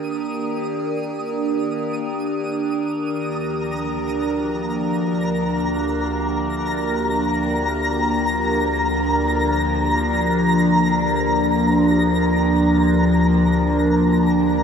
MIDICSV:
0, 0, Header, 1, 3, 480
1, 0, Start_track
1, 0, Tempo, 500000
1, 14049, End_track
2, 0, Start_track
2, 0, Title_t, "Synth texture"
2, 0, Program_c, 0, 99
2, 0, Note_on_c, 0, 87, 73
2, 2896, Note_on_c, 0, 82, 82
2, 2920, Note_off_c, 0, 87, 0
2, 14049, Note_off_c, 0, 82, 0
2, 14049, End_track
3, 0, Start_track
3, 0, Title_t, "Ambient pad"
3, 0, Program_c, 1, 92
3, 0, Note_on_c, 1, 51, 72
3, 0, Note_on_c, 1, 58, 80
3, 0, Note_on_c, 1, 62, 67
3, 0, Note_on_c, 1, 67, 76
3, 0, Note_on_c, 1, 70, 69
3, 2882, Note_on_c, 1, 38, 74
3, 2897, Note_off_c, 1, 51, 0
3, 3200, Note_on_c, 1, 53, 66
3, 14049, Note_off_c, 1, 38, 0
3, 14049, Note_off_c, 1, 53, 0
3, 14049, Note_off_c, 1, 58, 0
3, 14049, Note_off_c, 1, 62, 0
3, 14049, Note_off_c, 1, 67, 0
3, 14049, Note_off_c, 1, 70, 0
3, 14049, End_track
0, 0, End_of_file